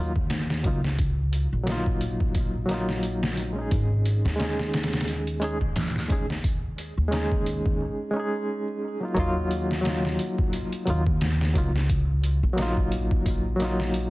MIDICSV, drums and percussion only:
0, 0, Header, 1, 2, 480
1, 0, Start_track
1, 0, Key_signature, -6, "minor"
1, 0, Tempo, 681818
1, 694, Time_signature, 4, 2, 24, 8
1, 9926, End_track
2, 0, Start_track
2, 0, Title_t, "Drums"
2, 111, Note_on_c, 9, 36, 96
2, 181, Note_off_c, 9, 36, 0
2, 211, Note_on_c, 9, 42, 86
2, 214, Note_on_c, 9, 38, 109
2, 281, Note_off_c, 9, 42, 0
2, 284, Note_off_c, 9, 38, 0
2, 353, Note_on_c, 9, 38, 53
2, 424, Note_off_c, 9, 38, 0
2, 451, Note_on_c, 9, 42, 62
2, 453, Note_on_c, 9, 36, 87
2, 522, Note_off_c, 9, 42, 0
2, 524, Note_off_c, 9, 36, 0
2, 593, Note_on_c, 9, 38, 37
2, 664, Note_off_c, 9, 38, 0
2, 694, Note_on_c, 9, 36, 102
2, 694, Note_on_c, 9, 42, 78
2, 764, Note_off_c, 9, 36, 0
2, 764, Note_off_c, 9, 42, 0
2, 935, Note_on_c, 9, 42, 66
2, 1005, Note_off_c, 9, 42, 0
2, 1175, Note_on_c, 9, 42, 84
2, 1178, Note_on_c, 9, 38, 109
2, 1245, Note_off_c, 9, 42, 0
2, 1248, Note_off_c, 9, 38, 0
2, 1312, Note_on_c, 9, 36, 88
2, 1382, Note_off_c, 9, 36, 0
2, 1414, Note_on_c, 9, 42, 65
2, 1485, Note_off_c, 9, 42, 0
2, 1551, Note_on_c, 9, 36, 85
2, 1622, Note_off_c, 9, 36, 0
2, 1652, Note_on_c, 9, 42, 81
2, 1654, Note_on_c, 9, 36, 104
2, 1722, Note_off_c, 9, 42, 0
2, 1724, Note_off_c, 9, 36, 0
2, 1893, Note_on_c, 9, 42, 57
2, 1896, Note_on_c, 9, 38, 34
2, 1963, Note_off_c, 9, 42, 0
2, 1966, Note_off_c, 9, 38, 0
2, 2033, Note_on_c, 9, 38, 45
2, 2103, Note_off_c, 9, 38, 0
2, 2133, Note_on_c, 9, 42, 85
2, 2203, Note_off_c, 9, 42, 0
2, 2273, Note_on_c, 9, 38, 116
2, 2344, Note_off_c, 9, 38, 0
2, 2375, Note_on_c, 9, 42, 61
2, 2445, Note_off_c, 9, 42, 0
2, 2614, Note_on_c, 9, 42, 82
2, 2615, Note_on_c, 9, 36, 105
2, 2685, Note_off_c, 9, 36, 0
2, 2685, Note_off_c, 9, 42, 0
2, 2855, Note_on_c, 9, 42, 62
2, 2925, Note_off_c, 9, 42, 0
2, 2996, Note_on_c, 9, 38, 39
2, 3067, Note_off_c, 9, 38, 0
2, 3095, Note_on_c, 9, 42, 86
2, 3098, Note_on_c, 9, 38, 107
2, 3166, Note_off_c, 9, 42, 0
2, 3168, Note_off_c, 9, 38, 0
2, 3234, Note_on_c, 9, 38, 43
2, 3304, Note_off_c, 9, 38, 0
2, 3334, Note_on_c, 9, 42, 62
2, 3337, Note_on_c, 9, 38, 83
2, 3403, Note_off_c, 9, 42, 0
2, 3403, Note_on_c, 9, 42, 64
2, 3406, Note_off_c, 9, 38, 0
2, 3406, Note_on_c, 9, 38, 86
2, 3472, Note_off_c, 9, 42, 0
2, 3472, Note_on_c, 9, 42, 64
2, 3474, Note_off_c, 9, 38, 0
2, 3474, Note_on_c, 9, 38, 81
2, 3523, Note_off_c, 9, 42, 0
2, 3523, Note_on_c, 9, 42, 68
2, 3526, Note_off_c, 9, 38, 0
2, 3526, Note_on_c, 9, 38, 85
2, 3574, Note_off_c, 9, 42, 0
2, 3574, Note_on_c, 9, 42, 84
2, 3596, Note_off_c, 9, 38, 0
2, 3645, Note_off_c, 9, 42, 0
2, 3712, Note_on_c, 9, 42, 44
2, 3782, Note_off_c, 9, 42, 0
2, 3813, Note_on_c, 9, 42, 58
2, 3884, Note_off_c, 9, 42, 0
2, 3950, Note_on_c, 9, 36, 91
2, 4021, Note_off_c, 9, 36, 0
2, 4054, Note_on_c, 9, 42, 88
2, 4057, Note_on_c, 9, 38, 107
2, 4124, Note_off_c, 9, 42, 0
2, 4127, Note_off_c, 9, 38, 0
2, 4194, Note_on_c, 9, 38, 49
2, 4265, Note_off_c, 9, 38, 0
2, 4294, Note_on_c, 9, 36, 86
2, 4294, Note_on_c, 9, 42, 60
2, 4364, Note_off_c, 9, 36, 0
2, 4365, Note_off_c, 9, 42, 0
2, 4435, Note_on_c, 9, 38, 37
2, 4506, Note_off_c, 9, 38, 0
2, 4533, Note_on_c, 9, 36, 96
2, 4534, Note_on_c, 9, 42, 85
2, 4604, Note_off_c, 9, 36, 0
2, 4604, Note_off_c, 9, 42, 0
2, 4775, Note_on_c, 9, 42, 64
2, 4845, Note_off_c, 9, 42, 0
2, 5014, Note_on_c, 9, 42, 81
2, 5017, Note_on_c, 9, 38, 102
2, 5085, Note_off_c, 9, 42, 0
2, 5088, Note_off_c, 9, 38, 0
2, 5151, Note_on_c, 9, 36, 89
2, 5221, Note_off_c, 9, 36, 0
2, 5254, Note_on_c, 9, 42, 66
2, 5325, Note_off_c, 9, 42, 0
2, 5390, Note_on_c, 9, 36, 88
2, 5460, Note_off_c, 9, 36, 0
2, 6453, Note_on_c, 9, 36, 99
2, 6453, Note_on_c, 9, 42, 85
2, 6523, Note_off_c, 9, 42, 0
2, 6524, Note_off_c, 9, 36, 0
2, 6694, Note_on_c, 9, 42, 68
2, 6764, Note_off_c, 9, 42, 0
2, 6835, Note_on_c, 9, 38, 41
2, 6905, Note_off_c, 9, 38, 0
2, 6935, Note_on_c, 9, 42, 85
2, 6938, Note_on_c, 9, 38, 113
2, 7005, Note_off_c, 9, 42, 0
2, 7008, Note_off_c, 9, 38, 0
2, 7074, Note_on_c, 9, 38, 46
2, 7145, Note_off_c, 9, 38, 0
2, 7174, Note_on_c, 9, 42, 70
2, 7245, Note_off_c, 9, 42, 0
2, 7311, Note_on_c, 9, 36, 97
2, 7381, Note_off_c, 9, 36, 0
2, 7413, Note_on_c, 9, 42, 83
2, 7484, Note_off_c, 9, 42, 0
2, 7551, Note_on_c, 9, 42, 45
2, 7621, Note_off_c, 9, 42, 0
2, 7652, Note_on_c, 9, 42, 64
2, 7722, Note_off_c, 9, 42, 0
2, 7790, Note_on_c, 9, 36, 95
2, 7861, Note_off_c, 9, 36, 0
2, 7893, Note_on_c, 9, 42, 87
2, 7896, Note_on_c, 9, 38, 114
2, 7963, Note_off_c, 9, 42, 0
2, 7966, Note_off_c, 9, 38, 0
2, 8034, Note_on_c, 9, 38, 54
2, 8104, Note_off_c, 9, 38, 0
2, 8134, Note_on_c, 9, 36, 82
2, 8134, Note_on_c, 9, 42, 66
2, 8204, Note_off_c, 9, 36, 0
2, 8204, Note_off_c, 9, 42, 0
2, 8276, Note_on_c, 9, 38, 39
2, 8346, Note_off_c, 9, 38, 0
2, 8374, Note_on_c, 9, 36, 105
2, 8374, Note_on_c, 9, 42, 84
2, 8444, Note_off_c, 9, 36, 0
2, 8444, Note_off_c, 9, 42, 0
2, 8614, Note_on_c, 9, 42, 67
2, 8685, Note_off_c, 9, 42, 0
2, 8854, Note_on_c, 9, 42, 81
2, 8857, Note_on_c, 9, 38, 110
2, 8924, Note_off_c, 9, 42, 0
2, 8927, Note_off_c, 9, 38, 0
2, 8991, Note_on_c, 9, 36, 91
2, 9061, Note_off_c, 9, 36, 0
2, 9094, Note_on_c, 9, 42, 69
2, 9164, Note_off_c, 9, 42, 0
2, 9230, Note_on_c, 9, 36, 96
2, 9301, Note_off_c, 9, 36, 0
2, 9333, Note_on_c, 9, 36, 106
2, 9335, Note_on_c, 9, 42, 85
2, 9404, Note_off_c, 9, 36, 0
2, 9405, Note_off_c, 9, 42, 0
2, 9573, Note_on_c, 9, 42, 65
2, 9576, Note_on_c, 9, 38, 32
2, 9644, Note_off_c, 9, 42, 0
2, 9646, Note_off_c, 9, 38, 0
2, 9713, Note_on_c, 9, 38, 47
2, 9783, Note_off_c, 9, 38, 0
2, 9813, Note_on_c, 9, 42, 81
2, 9883, Note_off_c, 9, 42, 0
2, 9926, End_track
0, 0, End_of_file